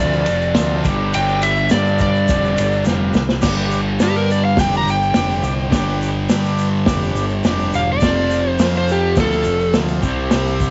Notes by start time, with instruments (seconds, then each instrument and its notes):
Already playing: distorted electric guitar F2 C3 F3, electric slide guitar D5
0.00 picked electric bass D2, transistor combo organ F4 A4 B4
0.13 shaker
0.26 picked electric bass F1, ride, shaker
0.41 shaker
0.54 picked electric bass D2, transistor combo organ F4 A4 C5, snare, ride, shaker
0.84 picked electric bass G1, distorted electric guitar G2 D3, transistor combo organ G4 B4 D5, kick, ride, shaker
0.89 distorted electric guitar G3
1.14 picked electric bass G1, electric slide guitar G5, ride, shaker
1.28 shaker
1.42 electric slide guitar E5, ride, shaker
1.56 shaker
1.69 picked electric bass G2, transistor combo organ G4 B4, electric slide guitar D5, snare, ride, shaker
1.74 transistor combo organ F5
1.86 shaker
1.99 electric slide guitar D5, kick, ride, shaker
2.15 shaker
2.28 picked electric bass F1, transistor combo organ G4 B4 D5, kick, ride, shaker
2.44 shaker
2.57 picked electric bass G1, ride, shaker
2.72 shaker
2.84 picked electric bass F1, transistor combo organ G4 B4 F5, snare, shaker
3.14 picked electric bass C2, snare, shaker
3.29 snare
3.41 picked electric bass G1, distorted electric guitar G2 D3, transistor combo organ G4 B4 D5, kick, snare, crash, shaker
3.47 distorted electric guitar G3
3.71 shaker
4.00 picked electric bass G2, transistor combo organ G4 B4 D5, electric slide guitar G4, snare, open hi-hat, shaker
4.16 electric slide guitar A#4, shaker
4.31 electric slide guitar D5, shaker
4.45 electric slide guitar F5
4.57 picked electric bass F1, transistor combo organ G4 B4 D5, electric slide guitar G5, kick, snare, open hi-hat, shaker
4.74 electric slide guitar A#5, shaker
4.86 picked electric bass G1, shaker
4.90 electric slide guitar G5
5.02 shaker
5.14 picked electric bass F1, transistor combo organ G4 B4 D5, snare, open hi-hat, shaker
5.30 shaker
5.43 picked electric bass C2, shaker
5.70 picked electric bass G1, distorted electric guitar G2 D3, transistor combo organ G4 B4 D5, kick, snare, open hi-hat, shaker
5.76 distorted electric guitar G3
6.02 shaker
6.29 picked electric bass G2, transistor combo organ G4 B4 D5, snare, open hi-hat, shaker
6.45 shaker
6.58 shaker
6.86 picked electric bass F1, transistor combo organ G4 B4 D5, kick, snare, open hi-hat, shaker
7.03 shaker
7.15 picked electric bass G1, shaker
7.29 shaker
7.44 picked electric bass F1, transistor combo organ G4 B4 D5, snare, open hi-hat, shaker
7.59 shaker
7.73 picked electric bass E1, electric slide guitar F5, shaker
7.93 electric slide guitar D5
8.00 picked electric bass F1, distorted electric guitar F2 C3, transistor combo organ F4 A4 C5, kick, snare, open hi-hat, shaker
8.06 distorted electric guitar F3
8.31 shaker
8.50 electric slide guitar C5
8.59 picked electric bass F2, transistor combo organ F4 A4 C5, snare, open hi-hat, shaker
8.74 electric slide guitar C5, shaker
8.88 electric slide guitar G4, shaker
9.16 picked electric bass D2, transistor combo organ F4 A4 C5, kick, snare, open hi-hat, shaker
9.20 electric slide guitar A4
9.31 shaker
9.44 picked electric bass F1, shaker
9.60 shaker
9.73 picked electric bass D2, transistor combo organ F4 A4 C5, snare, open hi-hat, shaker
9.88 shaker
10.02 picked electric bass C2, distorted electric guitar C3 G3, transistor combo organ E4 G4 C5, kick, shaker
10.08 distorted electric guitar C4
10.31 picked electric bass C2, snare, open hi-hat, shaker
10.46 shaker
10.60 kick, shaker